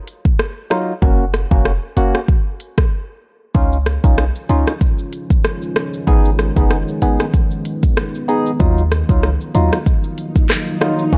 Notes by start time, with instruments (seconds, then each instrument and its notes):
0.08 closed hi-hat
0.25 kick
0.39 cross-stick
0.70 synth stab F#3 D#4 F4, cross-stick, closed hi-hat
1.02 808-style bass F#1, synth stab A#3 C#4 F#4, kick
1.34 cross-stick, closed hi-hat
1.51 808-style bass F1, synth stab A#3 C#4 F#4, kick
1.65 cross-stick
1.97 808-style bass F#1, synth stab A#3 C#4 F#4, closed hi-hat
2.15 cross-stick
2.28 kick
2.60 closed hi-hat
2.78 kick, cross-stick
3.54 808-style bass C#2, ambient pad D#3 F3 G#3 C#4 F4, synth stab C#4 D#4 F4, kick, shaker
3.73 shaker
3.86 cross-stick, closed hi-hat, shaker
4.04 808-style bass B1, synth stab C#4 D#4 F4, kick, shaker
4.18 cross-stick, shaker
4.36 shaker
4.49 808-style bass C#2, synth stab C#4 D#4 F4, closed hi-hat, shaker
4.67 cross-stick, shaker
4.81 kick, shaker
4.99 shaker
5.13 closed hi-hat, shaker
5.30 kick, shaker
5.44 cross-stick, shaker
5.62 shaker
5.76 cross-stick, closed hi-hat, shaker
5.94 shaker
6.07 808-style bass G#1, synth stab B3 D#4 G#4, ambient pad B3, kick, shaker
6.25 shaker
6.39 cross-stick, closed hi-hat, shaker
6.56 808-style bass F#1, synth stab B3 D#4 G#4, kick, shaker
6.71 cross-stick, shaker
6.88 shaker
7.02 808-style bass G#1, synth stab B3 D#4 G#4, closed hi-hat, shaker
7.20 cross-stick, shaker
7.34 kick, shaker
7.51 shaker
7.65 closed hi-hat, shaker
7.83 kick, shaker
7.97 cross-stick, shaker
8.15 shaker
8.28 synth stab B3 D#4 G#4, closed hi-hat, shaker
8.46 shaker
8.60 808-style bass D#2, ambient pad F3 F#3 A#3 F4, synth stab F#3 D#4 F4, kick, swell, shaker
8.78 shaker
8.92 cross-stick, closed hi-hat, shaker
9.09 808-style bass C#2, synth stab F#3 D#4 F4, kick, shaker
9.23 cross-stick, shaker
9.41 shaker
9.55 808-style bass D#2, synth stab F#3 D#4 F4, closed hi-hat, shaker
9.73 cross-stick, shaker
9.86 kick, shaker
10.04 shaker
10.18 closed hi-hat, shaker
10.36 kick, shaker
10.49 cross-stick, clap, shaker
10.67 shaker
10.81 synth stab F#3 D#4 F4, cross-stick, closed hi-hat, shaker
10.99 shaker
11.12 808-style bass F#1, synth stab A#3 C#4 F#4, ambient pad A#3 C#4, kick, shaker